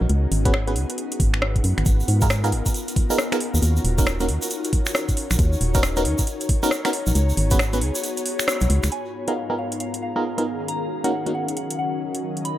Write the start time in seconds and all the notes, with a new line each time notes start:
Already playing: C#4 D#4 F#4 D#5
0.01 A#1
0.09 C#2 B3 G#4, closed hi-hat
0.32 G#1, open hi-hat
0.45 B3 C#4 F#4 G#4 B4, kick, closed hi-hat
0.53 B4, finger snap, cross-stick
0.63 C#4 F#4 G#4 F#5
0.67 B3 B4, closed hi-hat
0.76 C#2, open hi-hat
0.90 closed hi-hat
0.98 closed hi-hat
1.12 closed hi-hat
1.20 G#1, kick, open hi-hat
1.34 finger snap
1.42 cross-stick
1.56 kick, closed hi-hat
1.64 F#2, open hi-hat
1.78 G#1, finger snap, closed hi-hat
1.86 G#1 B3 F4 A#4, kick, closed hi-hat, shaker
1.98 A#4, shaker
2.08 G#2, open hi-hat
2.21 B3 D#4 F4 G#4 A#4, kick, closed hi-hat, shaker
2.30 finger snap, cross-stick, shaker
2.44 B3 D#4 F4 G#4 A#4, closed hi-hat, shaker
2.52 G#1, open hi-hat
2.66 kick, closed hi-hat, shaker
2.74 closed hi-hat, shaker
2.88 closed hi-hat, shaker
2.96 kick, open hi-hat
3.10 B3 D#4 F4 G#4 A#4, shaker
3.18 cross-stick, shaker
3.32 B3 D#4 F4 G#4 A#4, finger snap, closed hi-hat, shaker
3.40 C#4 D#4 F4 F#4, open hi-hat
3.54 D#2, shaker
3.62 D#2, closed hi-hat, shaker
3.77 shaker
3.84 D#1, open hi-hat
3.97 A#3 C#4 D#4 F#4 A#4 C#5, kick, closed hi-hat, shaker
4.06 finger snap, cross-stick, shaker
4.20 A#3 C#4 D#4 F#4 A#4, closed hi-hat, shaker
4.29 D#2, open hi-hat
4.42 closed hi-hat, shaker
4.50 closed hi-hat, shaker
4.64 closed hi-hat, shaker
4.73 kick, open hi-hat
4.86 finger snap, shaker
4.95 cross-stick, shaker
5.09 kick, closed hi-hat, shaker
5.17 open hi-hat
5.31 A#1, finger snap, closed hi-hat, shaker
5.39 D#2 D#4, kick, closed hi-hat
5.53 shaker
5.61 D#1, open hi-hat
5.75 B3 C#4 D#4 F#4 A#4, kick, closed hi-hat, shaker
5.83 finger snap, cross-stick, shaker
5.96 B3 C#4 D#4 F#4 A#4, closed hi-hat, shaker
6.05 D#2, open hi-hat
6.18 kick, closed hi-hat, shaker
6.27 closed hi-hat, shaker
6.41 closed hi-hat, shaker
6.49 kick, open hi-hat
6.63 B3 C#4 D#4 F#4 A#4, shaker
6.71 cross-stick, shaker
6.85 B3 C#4 D#4 F#4 A#4, finger snap, closed hi-hat, shaker
6.93 open hi-hat
7.07 A#1, shaker
7.15 C#2 B3 F#4 G#4, closed hi-hat, shaker
7.29 shaker
7.37 G#1, open hi-hat
7.51 B3 C#4 F#4 G#4 B4, kick, closed hi-hat, shaker
7.59 finger snap, cross-stick, shaker
7.73 B3 C#4 F#4 G#4 B4, closed hi-hat, shaker
7.81 C#2, open hi-hat
7.95 closed hi-hat, shaker
8.04 closed hi-hat, shaker
8.17 closed hi-hat, shaker
8.26 open hi-hat
8.39 finger snap, shaker
8.48 cross-stick, shaker
8.61 B1, closed hi-hat, shaker
8.70 C#2, open hi-hat
8.83 C#2, finger snap, closed hi-hat, shaker
8.92 G#2 B3 D#4 F4 A#4 G#5, closed hi-hat
9.13 A#5
9.28 B3 D#4 F4 G#4 A#4 F5, closed hi-hat
9.50 B3 D#4 F4 G#4 A#4
9.58 F5
9.62 F5
9.72 closed hi-hat
9.80 F5, closed hi-hat
9.94 closed hi-hat
10.02 F5
10.16 B3 D#4 F4 G#4 A#4
10.38 B3 D#4 F4 G#4 A#4, closed hi-hat
10.46 D#3 C#4 D#4 F#4
10.68 A#5, closed hi-hat
11.04 A#3 C#4 D#4 F#4 A#4 F#5, closed hi-hat
11.22 F#3 A#3 C#4 D#4 F#4 A#4
11.26 closed hi-hat
11.35 D#5 F#5
11.48 closed hi-hat
11.57 F#5, closed hi-hat
11.70 closed hi-hat
11.79 F#5
12.15 closed hi-hat
12.37 closed hi-hat
12.45 D#3 D#4 B5, closed hi-hat